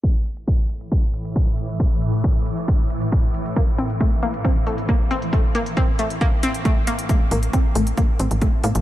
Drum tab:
HH |x-xxx-xxx-xxx-xx|x-xxx-xxx-xxx-xx|x-xxx-xxx-xxx-xx|x-xxx-xxx-xxx-xx|
BD |o---o---o---o---|o---o---o---o---|o---o---o---o---|o---o---o---o---|

HH |x-oxx-oxx-oxx-ox|
BD |o---o---o---o---|